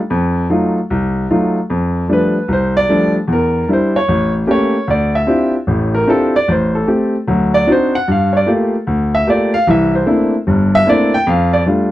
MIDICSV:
0, 0, Header, 1, 2, 480
1, 0, Start_track
1, 0, Key_signature, -1, "major"
1, 0, Tempo, 398406
1, 125, Time_signature, 4, 2, 24, 8
1, 14353, End_track
2, 0, Start_track
2, 0, Title_t, "Grand piano"
2, 0, Program_c, 0, 0
2, 125, Note_on_c, 0, 41, 74
2, 539, Note_off_c, 0, 41, 0
2, 599, Note_on_c, 0, 54, 49
2, 600, Note_on_c, 0, 63, 46
2, 601, Note_on_c, 0, 57, 48
2, 607, Note_on_c, 0, 65, 60
2, 928, Note_off_c, 0, 54, 0
2, 928, Note_off_c, 0, 57, 0
2, 928, Note_off_c, 0, 63, 0
2, 931, Note_off_c, 0, 65, 0
2, 1089, Note_on_c, 0, 36, 70
2, 1502, Note_off_c, 0, 36, 0
2, 1572, Note_on_c, 0, 57, 47
2, 1572, Note_on_c, 0, 63, 49
2, 1573, Note_on_c, 0, 54, 54
2, 1575, Note_on_c, 0, 65, 63
2, 1894, Note_off_c, 0, 57, 0
2, 1894, Note_off_c, 0, 63, 0
2, 1895, Note_off_c, 0, 54, 0
2, 1895, Note_off_c, 0, 65, 0
2, 2046, Note_on_c, 0, 41, 67
2, 2460, Note_off_c, 0, 41, 0
2, 2509, Note_on_c, 0, 53, 49
2, 2514, Note_on_c, 0, 55, 44
2, 2523, Note_on_c, 0, 57, 45
2, 2525, Note_on_c, 0, 62, 52
2, 2564, Note_on_c, 0, 71, 74
2, 2843, Note_off_c, 0, 53, 0
2, 2845, Note_off_c, 0, 55, 0
2, 2849, Note_off_c, 0, 57, 0
2, 2851, Note_off_c, 0, 62, 0
2, 2991, Note_on_c, 0, 36, 63
2, 2992, Note_off_c, 0, 71, 0
2, 3044, Note_on_c, 0, 72, 70
2, 3324, Note_off_c, 0, 72, 0
2, 3334, Note_on_c, 0, 74, 96
2, 3412, Note_off_c, 0, 36, 0
2, 3477, Note_on_c, 0, 53, 49
2, 3484, Note_on_c, 0, 55, 47
2, 3484, Note_on_c, 0, 57, 46
2, 3487, Note_on_c, 0, 62, 54
2, 3771, Note_off_c, 0, 74, 0
2, 3807, Note_off_c, 0, 53, 0
2, 3810, Note_off_c, 0, 55, 0
2, 3810, Note_off_c, 0, 57, 0
2, 3812, Note_off_c, 0, 62, 0
2, 3947, Note_on_c, 0, 40, 65
2, 4008, Note_on_c, 0, 70, 69
2, 4370, Note_off_c, 0, 40, 0
2, 4435, Note_off_c, 0, 70, 0
2, 4438, Note_on_c, 0, 55, 49
2, 4443, Note_on_c, 0, 62, 43
2, 4453, Note_on_c, 0, 64, 53
2, 4496, Note_on_c, 0, 72, 65
2, 4767, Note_off_c, 0, 55, 0
2, 4770, Note_off_c, 0, 62, 0
2, 4771, Note_off_c, 0, 72, 0
2, 4773, Note_on_c, 0, 73, 81
2, 4775, Note_off_c, 0, 64, 0
2, 4920, Note_on_c, 0, 33, 63
2, 5211, Note_off_c, 0, 73, 0
2, 5337, Note_off_c, 0, 33, 0
2, 5385, Note_on_c, 0, 57, 48
2, 5386, Note_on_c, 0, 58, 50
2, 5390, Note_on_c, 0, 61, 45
2, 5390, Note_on_c, 0, 67, 58
2, 5433, Note_on_c, 0, 73, 78
2, 5721, Note_off_c, 0, 57, 0
2, 5721, Note_off_c, 0, 58, 0
2, 5723, Note_off_c, 0, 61, 0
2, 5724, Note_off_c, 0, 67, 0
2, 5867, Note_off_c, 0, 73, 0
2, 5874, Note_on_c, 0, 38, 65
2, 5908, Note_on_c, 0, 74, 71
2, 6196, Note_off_c, 0, 74, 0
2, 6208, Note_on_c, 0, 76, 79
2, 6294, Note_off_c, 0, 38, 0
2, 6345, Note_on_c, 0, 60, 52
2, 6351, Note_on_c, 0, 64, 44
2, 6352, Note_on_c, 0, 62, 46
2, 6353, Note_on_c, 0, 65, 47
2, 6358, Note_on_c, 0, 67, 57
2, 6648, Note_off_c, 0, 76, 0
2, 6681, Note_off_c, 0, 60, 0
2, 6684, Note_off_c, 0, 62, 0
2, 6684, Note_off_c, 0, 64, 0
2, 6685, Note_off_c, 0, 65, 0
2, 6688, Note_off_c, 0, 67, 0
2, 6834, Note_on_c, 0, 33, 63
2, 6841, Note_on_c, 0, 45, 64
2, 7163, Note_on_c, 0, 70, 85
2, 7254, Note_off_c, 0, 33, 0
2, 7258, Note_off_c, 0, 45, 0
2, 7317, Note_on_c, 0, 60, 54
2, 7321, Note_on_c, 0, 62, 48
2, 7322, Note_on_c, 0, 64, 46
2, 7324, Note_on_c, 0, 67, 56
2, 7326, Note_off_c, 0, 70, 0
2, 7330, Note_on_c, 0, 65, 47
2, 7346, Note_on_c, 0, 69, 73
2, 7635, Note_off_c, 0, 69, 0
2, 7647, Note_off_c, 0, 60, 0
2, 7649, Note_off_c, 0, 62, 0
2, 7650, Note_off_c, 0, 64, 0
2, 7651, Note_off_c, 0, 67, 0
2, 7654, Note_off_c, 0, 65, 0
2, 7663, Note_on_c, 0, 74, 90
2, 7808, Note_on_c, 0, 33, 67
2, 7816, Note_off_c, 0, 74, 0
2, 7852, Note_on_c, 0, 72, 68
2, 8129, Note_off_c, 0, 72, 0
2, 8131, Note_on_c, 0, 69, 63
2, 8222, Note_off_c, 0, 33, 0
2, 8280, Note_on_c, 0, 57, 50
2, 8283, Note_on_c, 0, 60, 46
2, 8286, Note_on_c, 0, 67, 57
2, 8290, Note_off_c, 0, 69, 0
2, 8609, Note_off_c, 0, 57, 0
2, 8611, Note_off_c, 0, 60, 0
2, 8612, Note_off_c, 0, 67, 0
2, 8764, Note_on_c, 0, 54, 64
2, 8768, Note_on_c, 0, 38, 69
2, 9088, Note_on_c, 0, 74, 94
2, 9180, Note_off_c, 0, 54, 0
2, 9182, Note_off_c, 0, 38, 0
2, 9242, Note_on_c, 0, 60, 53
2, 9243, Note_on_c, 0, 62, 49
2, 9248, Note_on_c, 0, 66, 53
2, 9249, Note_off_c, 0, 74, 0
2, 9250, Note_on_c, 0, 63, 47
2, 9302, Note_on_c, 0, 72, 77
2, 9570, Note_off_c, 0, 60, 0
2, 9571, Note_off_c, 0, 62, 0
2, 9573, Note_off_c, 0, 66, 0
2, 9574, Note_off_c, 0, 63, 0
2, 9575, Note_off_c, 0, 72, 0
2, 9581, Note_on_c, 0, 78, 93
2, 9733, Note_on_c, 0, 43, 66
2, 9736, Note_off_c, 0, 78, 0
2, 9777, Note_on_c, 0, 77, 74
2, 10033, Note_on_c, 0, 73, 55
2, 10050, Note_off_c, 0, 73, 0
2, 10052, Note_off_c, 0, 77, 0
2, 10080, Note_on_c, 0, 74, 82
2, 10145, Note_off_c, 0, 43, 0
2, 10195, Note_on_c, 0, 57, 51
2, 10200, Note_on_c, 0, 58, 43
2, 10205, Note_on_c, 0, 65, 48
2, 10209, Note_on_c, 0, 67, 53
2, 10225, Note_off_c, 0, 74, 0
2, 10527, Note_off_c, 0, 57, 0
2, 10530, Note_off_c, 0, 58, 0
2, 10532, Note_off_c, 0, 65, 0
2, 10534, Note_off_c, 0, 67, 0
2, 10686, Note_on_c, 0, 38, 65
2, 11019, Note_on_c, 0, 76, 92
2, 11102, Note_off_c, 0, 38, 0
2, 11167, Note_on_c, 0, 57, 52
2, 11169, Note_on_c, 0, 58, 47
2, 11170, Note_on_c, 0, 65, 48
2, 11172, Note_on_c, 0, 67, 59
2, 11175, Note_off_c, 0, 76, 0
2, 11201, Note_on_c, 0, 74, 75
2, 11485, Note_off_c, 0, 74, 0
2, 11493, Note_off_c, 0, 57, 0
2, 11493, Note_on_c, 0, 77, 99
2, 11494, Note_off_c, 0, 58, 0
2, 11495, Note_off_c, 0, 65, 0
2, 11496, Note_off_c, 0, 67, 0
2, 11652, Note_off_c, 0, 77, 0
2, 11652, Note_on_c, 0, 36, 70
2, 11653, Note_on_c, 0, 52, 71
2, 11692, Note_on_c, 0, 76, 74
2, 11970, Note_off_c, 0, 76, 0
2, 11989, Note_on_c, 0, 72, 62
2, 12065, Note_off_c, 0, 36, 0
2, 12066, Note_off_c, 0, 52, 0
2, 12122, Note_on_c, 0, 57, 50
2, 12122, Note_on_c, 0, 58, 49
2, 12124, Note_on_c, 0, 60, 49
2, 12130, Note_on_c, 0, 62, 49
2, 12132, Note_on_c, 0, 64, 61
2, 12140, Note_off_c, 0, 72, 0
2, 12451, Note_off_c, 0, 57, 0
2, 12451, Note_off_c, 0, 58, 0
2, 12452, Note_off_c, 0, 60, 0
2, 12455, Note_off_c, 0, 62, 0
2, 12456, Note_off_c, 0, 64, 0
2, 12614, Note_on_c, 0, 31, 62
2, 12618, Note_on_c, 0, 43, 65
2, 12952, Note_on_c, 0, 76, 109
2, 13026, Note_off_c, 0, 31, 0
2, 13029, Note_off_c, 0, 43, 0
2, 13085, Note_on_c, 0, 57, 54
2, 13094, Note_on_c, 0, 60, 50
2, 13096, Note_on_c, 0, 58, 52
2, 13098, Note_on_c, 0, 62, 50
2, 13102, Note_off_c, 0, 76, 0
2, 13102, Note_on_c, 0, 64, 63
2, 13123, Note_on_c, 0, 74, 90
2, 13406, Note_off_c, 0, 74, 0
2, 13413, Note_off_c, 0, 57, 0
2, 13417, Note_off_c, 0, 60, 0
2, 13418, Note_off_c, 0, 58, 0
2, 13419, Note_off_c, 0, 62, 0
2, 13421, Note_off_c, 0, 64, 0
2, 13425, Note_on_c, 0, 79, 100
2, 13575, Note_on_c, 0, 41, 76
2, 13578, Note_off_c, 0, 79, 0
2, 13600, Note_on_c, 0, 77, 74
2, 13884, Note_off_c, 0, 77, 0
2, 13895, Note_on_c, 0, 74, 80
2, 13987, Note_off_c, 0, 41, 0
2, 13993, Note_off_c, 0, 74, 0
2, 14050, Note_on_c, 0, 55, 52
2, 14053, Note_on_c, 0, 57, 47
2, 14059, Note_on_c, 0, 62, 47
2, 14060, Note_on_c, 0, 65, 54
2, 14353, Note_off_c, 0, 55, 0
2, 14353, Note_off_c, 0, 57, 0
2, 14353, Note_off_c, 0, 62, 0
2, 14353, Note_off_c, 0, 65, 0
2, 14353, End_track
0, 0, End_of_file